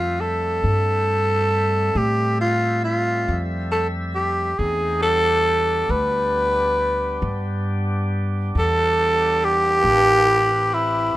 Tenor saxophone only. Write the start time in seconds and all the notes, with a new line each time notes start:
Already playing: F4
0.20 A4
1.97 G4
2.40 F4
2.84 F4
3.72 A4
4.15 G4
4.58 G#4
5.02 A4
5.91 B4
8.59 A4
9.44 G4
10.74 E4